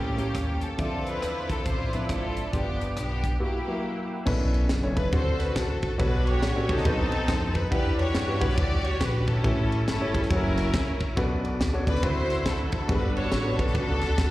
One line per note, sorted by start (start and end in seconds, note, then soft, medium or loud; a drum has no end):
0.00 0.29 A1 medium
0.00 0.58 A2 medium
0.00 0.77 F3 medium
0.00 0.75 G3 medium
0.00 0.13 A#3 medium
0.00 0.59 A#3 medium
0.00 0.78 A#3 medium
0.00 0.13 C#4 medium
0.00 0.59 C#4 medium
0.00 0.78 C#4 medium
0.00 0.13 G4 medium
0.00 0.63 G4 medium
0.00 0.13 A4 medium
0.00 0.78 A#4 medium
0.00 0.78 G5 soft
0.00 0.77 A5 medium
0.00 0.78 C#6 medium
0.18 0.64 A#3 medium
0.18 0.64 C#4 medium
0.18 0.64 G4 medium
0.18 0.65 A#4 medium
0.18 closed hi-hat medium
0.35 0.72 D#2 medium
0.35 kick medium
0.35 cross-stick loud
0.35 closed hi-hat medium
0.61 0.78 A4 medium
0.61 closed hi-hat medium
0.77 1.16 D2 medium
0.77 1.45 D3 medium
0.77 2.51 D3 medium
0.77 3.37 F3 medium
0.77 1.45 F3 medium
0.77 1.44 C4 medium
0.77 2.51 C4 medium
0.77 1.62 C4 medium
0.77 1.45 D4 medium
0.77 3.37 D4 medium
0.77 1.05 F4 medium
0.77 1.04 A4 medium
0.77 3.37 D5 soft
0.77 1.45 E5 medium
0.77 2.51 E5 medium
0.77 3.37 D6 medium
0.77 kick loud
0.77 closed hi-hat medium
1.06 1.66 E4 medium
1.06 1.66 F4 medium
1.06 1.50 B4 medium
1.06 closed hi-hat medium
1.22 1.46 E2 medium
1.22 cross-stick medium
1.22 closed hi-hat medium
1.50 1.64 C2 medium
1.50 1.66 A4 medium
1.50 kick medium
1.50 closed hi-hat medium
1.58 cross-stick soft
1.66 2.03 A1 medium
1.66 2.49 E4 medium
1.66 2.10 F4 medium
1.66 1.93 C5 medium
1.66 kick medium
1.66 closed hi-hat medium
1.93 2.39 F3 medium
1.93 2.38 C4 medium
1.93 2.39 D4 medium
1.93 2.10 B4 medium
1.93 2.39 E5 medium
1.93 closed hi-hat medium
2.09 2.46 G#1 medium
2.09 2.51 C4 medium
2.09 2.51 F4 medium
2.09 2.51 A4 medium
2.09 kick medium
2.09 cross-stick loud
2.09 closed hi-hat medium
2.37 closed hi-hat medium
2.52 2.90 G1 medium
2.52 3.20 G2 medium
2.52 4.25 D3 medium
2.52 3.19 B3 medium
2.52 2.97 B3 medium
2.52 3.40 B3 medium
2.52 3.19 D4 medium
2.52 2.97 D4 medium
2.52 3.19 F4 medium
2.52 3.19 G4 medium
2.52 2.97 G4 medium
2.52 3.39 B4 medium
2.52 4.25 G5 medium
2.52 kick loud
2.52 closed hi-hat medium
2.81 closed hi-hat medium
2.96 3.33 B1 medium
2.96 3.38 B3 medium
2.96 3.38 D4 medium
2.96 3.39 G4 medium
2.96 cross-stick medium
2.96 closed hi-hat medium
3.24 kick medium
3.24 closed hi-hat medium
3.39 4.26 F#3 medium
3.39 4.25 A#3 medium
3.39 3.62 A#3 medium
3.39 4.24 A#3 medium
3.39 4.25 E4 medium
3.39 3.62 E4 medium
3.39 3.62 F#4 medium
3.39 3.62 G4 medium
3.39 4.26 A#4 medium
3.39 4.26 F#5 soft
3.39 4.26 E6 medium
3.43 4.24 E4 medium
3.43 4.08 G4 medium
3.68 4.13 F#3 medium
3.68 4.13 A#3 medium
3.68 4.13 E4 medium
3.68 3.71 G4 medium
3.74 4.16 A#4 medium
4.26 4.63 B1 loud
4.26 4.92 B2 medium
4.26 4.66 C#4 medium
4.26 4.66 D4 medium
4.26 4.66 E4 medium
4.26 4.66 A4 medium
4.26 4.66 B4 loud
4.26 kick loud
4.26 crash loud
4.54 ride bell medium
4.69 5.06 F#1 medium
4.69 snare loud
4.69 ride bell medium
4.83 4.93 C#4 medium
4.83 4.93 D4 medium
4.83 4.93 E4 medium
4.83 4.93 A4 medium
4.83 4.93 C#5 medium
4.95 5.12 C#4 medium
4.95 5.11 D4 medium
4.95 5.13 E4 medium
4.95 5.12 A4 medium
4.95 5.13 B4 medium
4.95 5.12 B4 medium
4.95 kick loud
4.95 ride bell medium
5.12 5.50 D2 loud
5.12 5.79 D3 medium
5.12 5.86 C4 medium
5.12 5.86 D4 medium
5.12 5.86 F#4 medium
5.12 5.96 F#4 medium
5.12 5.86 A4 medium
5.12 5.55 A4 medium
5.12 5.87 C5 medium
5.12 5.38 C5 medium
5.12 kick loud
5.12 ride bell medium
5.40 5.56 B4 medium
5.40 snare soft
5.40 ride bell medium
5.56 5.93 C2 loud
5.56 5.81 A4 medium
5.56 kick loud
5.56 snare loud
5.56 ride bell medium
5.82 5.98 A4 medium
5.82 kick medium
5.82 ride bell medium
5.98 6.36 B1 loud
5.98 6.65 B2 medium
5.98 6.38 G3 medium
5.98 6.82 D4 medium
5.98 6.38 F#4 medium
5.98 6.26 F#4 medium
5.98 6.38 A4 medium
5.98 6.24 B4 medium
5.98 6.39 B4 medium
5.98 6.38 C#5 medium
5.98 kick loud
5.98 ride bell medium
6.26 6.82 F#4 medium
6.26 6.82 G4 medium
6.26 6.69 C#5 loud
6.26 ride bell medium
6.42 6.65 A1 loud
6.42 snare loud
6.42 ride bell medium
6.56 6.65 C#4 medium
6.56 6.65 F#4 medium
6.56 6.65 G4 medium
6.56 6.66 A4 medium
6.56 6.66 D5 medium
6.68 6.83 C#2 loud
6.68 7.52 C4 medium
6.68 6.85 C#4 medium
6.68 7.52 D#4 medium
6.68 6.84 F#4 medium
6.68 6.85 G4 medium
6.68 7.55 A4 loud
6.68 6.84 A4 medium
6.68 6.86 C#5 medium
6.68 kick loud
6.68 ride bell medium
6.77 snare soft
6.84 7.08 B1 loud
6.84 7.51 B2 medium
6.84 7.58 C4 medium
6.84 6.92 D4 medium
6.84 7.58 F#4 medium
6.84 7.59 A4 medium
6.84 7.59 B4 medium
6.84 kick loud
6.84 ride bell medium
6.90 7.61 D#4 medium
7.12 7.26 C2 medium
7.12 ride bell medium
7.28 7.65 F2 loud
7.28 kick loud
7.28 snare loud
7.28 ride bell medium
7.55 7.71 B4 medium
7.55 kick loud
7.55 ride bell medium
7.70 8.08 E2 loud
7.70 8.37 E3 medium
7.70 8.10 D4 medium
7.70 8.55 D4 medium
7.70 8.11 E4 medium
7.70 8.11 G4 medium
7.70 7.99 G4 medium
7.70 8.11 B4 medium
7.70 7.97 B4 loud
7.70 8.11 F#5 medium
7.70 kick loud
7.70 ride bell medium
7.98 8.59 F#4 medium
7.98 8.59 G4 medium
7.98 8.39 C#5 loud
7.98 ride bell medium
8.14 8.37 G2 loud
8.14 snare loud
8.14 ride bell medium
8.27 8.37 D4 medium
8.27 8.37 E4 medium
8.27 8.37 F#4 medium
8.27 8.38 G4 medium
8.27 8.38 B4 medium
8.40 8.55 B1 loud
8.40 8.98 G3 medium
8.40 8.98 D4 medium
8.40 8.98 E4 medium
8.40 8.58 B4 loud
8.40 8.98 C#5 medium
8.40 8.98 F#5 medium
8.40 kick loud
8.40 ride bell medium
8.50 snare soft
8.58 8.94 D2 loud
8.58 9.41 F#4 medium
8.58 9.41 G4 medium
8.58 8.85 D5 loud
8.58 kick loud
8.58 ride bell medium
8.85 9.01 C#5 loud
8.85 ride bell medium
9.01 9.38 A#1 loud
9.01 9.28 B4 medium
9.01 kick loud
9.01 snare loud
9.01 ride bell medium
9.27 9.87 C#4 medium
9.27 9.87 E4 medium
9.27 9.86 A4 medium
9.27 kick medium
9.27 ride bell medium
9.43 9.81 A1 loud
9.43 10.10 A2 medium
9.43 9.83 C#4 medium
9.43 9.83 E4 medium
9.43 9.83 G4 medium
9.43 9.83 A4 medium
9.43 9.51 B4 medium
9.43 kick loud
9.43 ride bell medium
9.49 9.86 C#5 medium
9.72 ride bell medium
9.87 10.24 G1 medium
9.87 10.28 C#4 medium
9.87 10.28 E4 medium
9.87 10.27 A4 medium
9.87 snare loud
9.87 ride bell medium
10.00 10.10 C#4 medium
10.00 10.10 E4 medium
10.00 10.10 G4 medium
10.00 10.11 A4 medium
10.00 10.11 C#5 medium
10.14 10.29 C#4 medium
10.14 10.29 E4 medium
10.14 10.31 G4 medium
10.14 10.30 A4 medium
10.14 10.30 C#5 medium
10.14 kick loud
10.14 ride bell medium
10.22 snare soft
10.30 10.67 F#1 loud
10.30 11.04 C#4 medium
10.30 11.13 C#4 medium
10.30 11.04 E4 medium
10.30 11.13 E4 medium
10.30 11.04 F#4 medium
10.30 10.37 A4 medium
10.30 10.97 A#4 medium
10.30 11.04 C#5 medium
10.30 kick loud
10.30 ride bell medium
10.37 11.07 A#4 medium
10.58 snare soft
10.58 ride bell medium
10.74 11.10 C2 loud
10.74 kick loud
10.74 snare loud
10.74 ride bell medium
11.00 kick medium
11.00 ride bell medium
11.16 11.54 B1 loud
11.16 11.83 B2 medium
11.16 11.56 B3 medium
11.16 11.23 C#4 medium
11.16 11.56 F#4 medium
11.16 11.56 A4 medium
11.16 11.57 B4 loud
11.16 12.03 B4 medium
11.16 14.31 F#5 medium
11.16 12.03 A5 medium
11.16 12.03 D6 medium
11.16 kick loud
11.16 ride bell medium
11.22 11.59 D4 medium
11.45 ride bell medium
11.60 11.83 D2 loud
11.60 snare loud
11.60 ride bell medium
11.73 11.83 B3 medium
11.73 11.83 D4 medium
11.73 11.83 F#4 medium
11.73 11.83 A4 medium
11.73 11.83 C#5 medium
11.86 12.01 C#2 loud
11.86 12.03 B3 medium
11.86 12.01 D4 medium
11.86 12.02 F#4 medium
11.86 12.03 A4 medium
11.86 12.03 B4 loud
11.86 12.04 D5 medium
11.86 kick loud
11.86 ride bell medium
11.95 snare soft
12.03 12.40 D2 loud
12.03 12.69 D3 medium
12.03 12.76 C4 medium
12.03 12.76 D4 medium
12.03 12.85 E4 medium
12.03 12.76 E4 medium
12.03 12.85 F#4 medium
12.03 12.76 F#4 medium
12.03 12.10 A#4 medium
12.03 12.88 C5 medium
12.03 12.47 C5 loud
12.03 14.31 B5 medium
12.03 12.89 E6 medium
12.03 kick loud
12.03 ride bell medium
12.09 12.79 B5 medium
12.30 snare soft
12.30 ride bell medium
12.46 12.69 C2 medium
12.46 12.73 A4 medium
12.46 kick loud
12.46 snare loud
12.46 ride bell medium
12.72 12.91 E2 loud
12.72 12.89 A4 medium
12.72 kick medium
12.72 ride bell medium
12.88 13.26 G1 loud
12.88 13.55 G2 medium
12.88 13.28 G3 medium
12.88 13.28 B3 medium
12.88 13.28 D4 medium
12.88 13.59 D4 medium
12.88 13.28 F#4 medium
12.88 13.15 F#4 medium
12.88 12.96 G#4 medium
12.88 14.31 A4 medium
12.88 13.16 B4 medium
12.88 kick loud
12.88 ride bell medium
12.95 13.31 A4 medium
13.16 13.59 F#4 medium
13.16 13.60 A4 medium
13.16 13.60 C#5 medium
13.16 ride bell medium
13.32 13.55 A1 loud
13.32 snare loud
13.32 ride bell medium
13.44 13.55 B3 medium
13.44 13.55 D4 medium
13.44 13.55 F#4 medium
13.44 13.55 G4 medium
13.44 13.55 B4 medium
13.58 13.73 B1 loud
13.58 14.16 G3 medium
13.58 14.15 B3 medium
13.58 14.15 D4 medium
13.58 14.31 D4 medium
13.58 14.15 F#4 medium
13.58 14.31 F#4 medium
13.58 14.31 A4 loud
13.58 14.16 B4 medium
13.58 kick medium
13.58 ride bell medium
13.67 snare soft
13.75 13.98 C#2 loud
13.75 kick loud
13.75 ride bell medium
14.01 14.16 D2 medium
14.01 snare soft
14.01 ride bell medium
14.18 14.31 F1 loud
14.18 kick loud
14.18 snare loud
14.18 ride bell medium